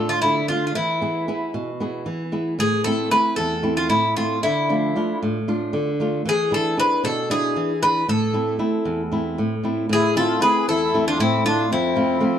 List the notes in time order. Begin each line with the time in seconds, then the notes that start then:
Already playing: A2 A3 D4 F4 A4
0.09 F4
0.22 D3 E4
0.48 A3 D4 F4
0.67 F4
0.75 E3 E4
1.01 B3 E4 G#4
1.28 B3 E4 G#4
1.54 B2
1.80 B3 E4 G#4
2.06 E3
2.32 B3 E4 G#4
2.59 A2 G#4
2.84 A3 C4 E4 A4
3.11 A3 C4 E4 B4
3.36 E2 A4
3.63 A3 C4 E4
3.77 F4
3.89 A2 E4
4.16 A3 C4 E4 F4
4.43 D3 E4
4.69 F3 A3 D4
4.96 A3 D4 F4
5.23 A2
5.48 A3 D4 F4
5.73 D3
6.00 A3 D4 F4
6.25 E3 G#4
6.51 D4 E4 G#4 A4
6.77 D4 E4 G#4 B4
7.04 B2 A4
7.30 D4 E4 G#4
7.56 E3
7.82 D4 E4 G#4 B4
8.08 A2 A4
8.33 A3 C4 E4
8.59 A3 C4 E4
8.85 E2
9.12 A3 C4 E4
9.38 A2
9.63 A3 C4 E4
9.89 A2 E4 G#4
10.16 A3 C4 E4 F4 A4
10.40 A3 C4 E4 G#4 B4
10.68 E2 E4 A4
10.94 A3 C4 E4
11.08 D4 F4
11.19 A2 C4 E4
11.45 A3 C4 D4 E4 F4
11.71 F2 C4 E4
11.96 F3 A3 C4
12.20 F3 A3 C4